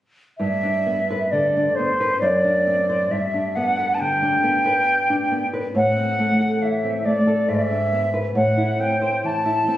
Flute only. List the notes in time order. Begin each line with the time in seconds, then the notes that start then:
0.38 E5
1.31 D5
1.75 C5
2.20 D5
3.11 E5
3.55 F#5
3.94 A5
4.00 G5
5.76 F#5
6.62 E5
7.05 D5
7.49 E5
7.54 D5
7.61 E5
8.35 F#5
8.80 G5
9.25 A5